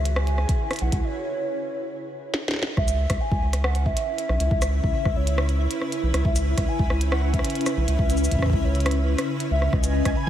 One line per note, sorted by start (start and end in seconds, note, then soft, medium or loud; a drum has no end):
0.00 0.45 C#2 medium
0.00 1.03 C#3 medium
0.00 1.03 C#4 medium
0.00 1.03 E4 medium
0.00 1.03 F#4 medium
0.00 1.03 G#4 medium
0.00 1.03 B4 medium
0.00 0.18 E5 loud
0.05 closed hi-hat medium
0.16 0.83 G#5 loud
0.16 cross-stick loud
0.27 closed hi-hat soft
0.38 cross-stick medium
0.49 kick loud
0.49 closed hi-hat medium
0.71 cross-stick medium
0.71 closed hi-hat soft
0.73 closed hi-hat soft
0.76 closed hi-hat soft
0.79 0.90 B1 medium
0.79 1.05 F#5 loud
0.79 closed hi-hat soft
0.92 1.01 C#2 medium
0.92 kick loud
0.92 closed hi-hat medium
1.03 2.55 C#5 loud
2.34 snare medium
2.48 snare medium
2.51 snare medium
2.54 snare medium
2.56 snare soft
2.59 snare soft
2.62 snare soft
2.62 snare medium
2.64 snare soft
2.67 snare soft
2.77 3.06 C#2 loud
2.77 10.29 C#3 medium
2.77 3.22 E5 loud
2.77 kick loud
2.77 cross-stick medium
2.88 closed hi-hat medium
2.88 cabasa medium
3.02 10.29 C#4 medium
3.10 3.18 C#2 medium
3.10 10.29 E4 medium
3.10 kick loud
3.10 cross-stick medium
3.10 closed hi-hat medium
3.21 3.66 G#5 loud
3.27 10.29 B4 medium
3.31 3.40 C#2 loud
3.31 kick loud
3.42 3.93 C#2 medium
3.53 cross-stick medium
3.53 closed hi-hat medium
3.64 3.87 F#5 loud
3.64 cross-stick loud
3.75 closed hi-hat soft
3.81 6.34 E5 medium
3.86 4.50 E5 loud
3.86 kick medium
3.97 closed hi-hat medium
4.18 closed hi-hat medium
4.29 4.38 B1 loud
4.29 cross-stick medium
4.40 4.49 C#2 medium
4.40 closed hi-hat medium
4.51 4.80 C#2 loud
4.51 5.18 E5 loud
4.51 kick loud
4.62 cross-stick medium
4.62 closed hi-hat medium
4.62 cabasa medium
4.84 4.92 C#2 medium
4.84 kick loud
5.05 5.14 C#2 loud
5.05 kick loud
5.05 cross-stick medium
5.16 5.67 C#2 medium
5.16 5.60 C#5 medium
5.27 closed hi-hat medium
5.38 cross-stick loud
5.49 closed hi-hat soft
5.71 closed hi-hat medium
5.82 cross-stick medium
5.92 closed hi-hat medium
6.03 6.12 B1 medium
6.14 6.23 C#2 medium
6.14 cross-stick medium
6.14 closed hi-hat medium
6.25 6.54 C#2 loud
6.25 6.70 E5 loud
6.25 kick loud
6.35 9.73 E5 medium
6.35 closed hi-hat medium
6.35 cabasa medium
6.58 6.66 C#2 medium
6.58 kick loud
6.58 cross-stick medium
6.58 closed hi-hat medium
6.68 7.13 G#5 loud
6.79 6.88 C#2 loud
6.79 kick loud
6.90 7.41 C#2 medium
6.90 cross-stick medium
7.01 closed hi-hat medium
7.12 7.35 F#5 loud
7.12 cross-stick loud
7.34 7.98 E5 loud
7.34 kick medium
7.34 closed hi-hat soft
7.39 cross-stick medium
7.45 closed hi-hat medium
7.50 closed hi-hat medium
7.55 closed hi-hat soft
7.61 closed hi-hat soft
7.66 cross-stick medium
7.66 closed hi-hat medium
7.66 cabasa medium
7.77 7.86 B1 medium
7.88 7.97 C#2 medium
7.88 closed hi-hat medium
7.99 8.28 C#2 loud
7.99 8.66 E5 loud
7.99 kick loud
8.10 closed hi-hat medium
8.10 cabasa soft
8.17 cabasa soft
8.24 cabasa medium
8.31 8.40 C#2 medium
8.31 kick soft
8.31 closed hi-hat medium
8.35 kick medium
8.39 kick medium
8.42 kick medium
8.42 cross-stick medium
8.46 kick medium
8.50 8.62 C#2 loud
8.50 kick medium
8.53 kick loud
8.64 9.15 C#2 medium
8.64 9.08 C#5 medium
8.75 closed hi-hat soft
8.80 closed hi-hat soft
8.86 cross-stick loud
8.86 closed hi-hat soft
8.91 closed hi-hat medium
9.18 cross-stick medium
9.18 closed hi-hat medium
9.40 closed hi-hat medium
9.51 9.68 C#2 medium
9.51 9.74 E5 loud
9.62 cross-stick soft
9.73 10.02 C#2 loud
9.73 10.18 D#5 loud
9.73 10.29 G#5 medium
9.73 kick loud
9.73 cross-stick medium
9.84 10.29 G#4 medium
9.84 closed hi-hat soft
9.84 cabasa medium
9.88 10.29 F#4 medium
10.05 10.14 C#2 medium
10.05 kick loud
10.05 cross-stick medium
10.05 closed hi-hat medium
10.16 10.29 B5 loud